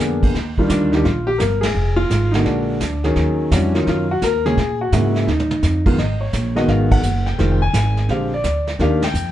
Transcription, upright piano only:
0.00 0.33 D3 medium
0.00 0.33 A#3 medium
0.00 0.33 B3 medium
0.00 0.19 D4 medium
0.00 0.33 G#4 medium
0.58 0.91 D#3 medium
0.58 0.91 G3 medium
0.58 0.68 D4 medium
0.58 0.91 F4 medium
0.69 0.93 D4 medium
0.92 1.04 D#3 medium
0.92 1.04 G3 medium
0.92 1.04 D4 medium
0.92 0.97 D#4 medium
0.92 1.05 G4 medium
1.04 1.28 F4 medium
1.27 1.39 G4 loud
1.38 1.63 A#4 medium
1.61 1.98 G#4 medium
1.96 2.34 F4 loud
2.32 2.79 D3 medium
2.32 2.79 G#3 medium
2.32 2.79 A#3 medium
2.32 2.45 D#4 medium
2.32 2.79 F#4 medium
2.45 3.00 D4 medium
3.04 3.49 D#3 medium
3.04 3.49 F#3 medium
3.04 3.49 C#4 medium
3.04 3.49 G#4 medium
3.51 3.72 E3 medium
3.51 3.72 G3 medium
3.51 3.74 C#4 medium
3.51 3.73 D4 soft
3.51 3.73 F#4 medium
3.74 4.05 D#3 medium
3.74 4.05 F#3 medium
3.74 4.05 C#4 medium
3.74 3.88 D#4 medium
3.74 3.87 F4 medium
3.89 4.11 F4 medium
4.11 4.22 F#4 medium
4.23 4.44 A#4 loud
4.46 4.56 C#3 medium
4.46 4.56 G#3 medium
4.46 4.57 A#3 medium
4.46 4.57 C#4 medium
4.46 4.78 G#4 loud
4.81 4.92 F#4 medium
4.93 5.28 C#3 medium
4.93 5.28 G#3 medium
4.93 5.28 A#3 medium
4.93 5.14 E4 medium
4.93 5.16 F#4 medium
5.15 5.28 E4 medium
5.28 5.82 D#4 medium
5.86 5.97 D#3 medium
5.86 5.97 G#3 medium
5.86 5.97 B3 medium
5.86 5.97 F4 medium
5.99 6.22 D#5 medium
6.21 6.53 C#5 medium
6.55 7.01 D#3 medium
6.55 7.01 G#3 medium
6.55 7.01 B3 medium
6.55 7.01 F#4 medium
6.55 6.69 D#5 medium
6.69 6.92 F5 medium
6.92 7.28 F#5 loud
7.26 7.50 G5 medium
7.38 7.59 D#3 medium
7.38 7.59 G#3 medium
7.38 7.59 C4 medium
7.38 7.60 F4 medium
7.52 7.61 G5 medium
7.62 8.06 G#5 loud
8.10 8.30 D3 medium
8.10 8.30 G#3 soft
8.10 8.31 C4 medium
8.10 8.31 G4 medium
8.10 8.33 F5 medium
8.34 8.66 D5 medium
8.79 9.00 D#3 medium
8.79 9.00 A#3 medium
8.79 9.00 D4 medium
8.79 9.01 G4 medium
8.79 9.04 F5 medium
9.04 9.32 G5 loud

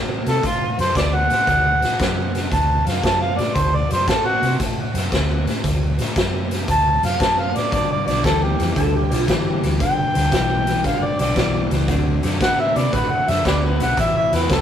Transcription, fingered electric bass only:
0.00 0.25 A2 medium
0.27 0.43 C3 medium
0.44 0.77 A2 medium
0.78 0.94 F#2 medium
0.96 1.29 D2 medium
1.31 1.47 A2 medium
1.48 1.81 D2 medium
1.82 1.99 A2 medium
2.00 2.50 F#2 medium
2.52 2.85 D2 loud
2.86 3.03 F#2 medium
3.04 3.37 F#2 medium
3.38 3.55 A2 medium
3.56 3.89 D2 medium
3.91 4.07 F#2 medium
4.08 4.41 A2 medium
4.42 4.59 C3 medium
4.60 4.93 A2 medium
4.94 5.11 F#2 medium
5.13 5.46 D2 medium
5.47 5.63 A2 medium
5.64 5.97 D2 medium
5.98 6.15 A2 medium
6.16 6.66 F#2 medium
6.69 7.02 D2 medium
7.02 7.19 F#2 medium
7.21 7.54 F#2 medium
7.55 7.72 A2 medium
7.73 8.06 G1 medium
8.07 8.24 B1 medium
8.25 8.58 D2 medium
8.59 8.76 F2 medium
8.76 9.10 D2 medium
9.12 9.28 B1 medium
9.28 9.62 G1 medium
9.63 9.80 D2 medium
9.81 10.14 G1 medium
10.15 10.32 D2 medium
10.32 10.82 B1 medium
10.85 11.18 G1 medium
11.20 11.36 B1 medium
11.37 11.70 B1 medium
11.71 11.88 C#2 medium
11.89 12.22 D2 medium
12.24 12.40 F#2 medium
12.41 12.75 A2 medium
12.76 12.92 C3 medium
12.93 13.27 A2 medium
13.28 13.45 F#2 medium
13.46 13.79 D2 medium
13.80 13.97 B1 medium
13.98 14.31 A1 medium
14.32 14.49 E2 medium
14.50 14.61 C#2 medium

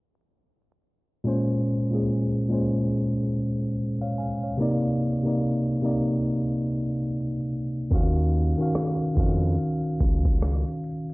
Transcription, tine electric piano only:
1.24 1.72 A#2 medium
1.24 1.73 G#3 medium
1.24 1.74 C#4 medium
1.28 1.75 C5 loud
1.91 2.37 A#2 medium
1.91 2.38 G#3 medium
1.91 2.38 C#4 medium
1.95 2.39 G#4 medium
2.49 3.75 A#2 medium
2.49 3.75 G#3 medium
2.49 3.76 C#4 medium
2.53 3.35 C5 medium
4.01 4.17 C#5 medium
4.01 4.17 F5 medium
4.18 4.41 F5 medium
4.18 4.41 G#5 medium
4.43 4.82 C#5 soft
4.43 4.82 F5 soft
4.57 5.06 C3 medium
4.57 5.07 A#3 medium
4.57 5.07 D#4 medium
4.62 5.08 D5 loud
5.23 5.70 C3 medium
5.23 5.71 A#3 medium
5.23 5.72 D#4 medium
5.28 5.72 D5 medium
5.82 7.08 C3 medium
5.82 7.09 A#3 medium
5.82 7.09 D#4 medium
5.86 7.10 D5 medium
7.91 8.39 D#3 medium
7.91 8.40 C#4 medium
7.91 8.40 F#4 medium
7.95 8.41 F5 loud
8.58 9.04 D#3 medium
8.58 9.05 C#4 medium
8.58 9.05 F#4 medium
8.62 9.06 F5 medium
9.15 10.41 D#3 medium
9.15 10.42 C#4 medium
9.15 10.42 F#4 medium
9.19 10.43 F5 medium

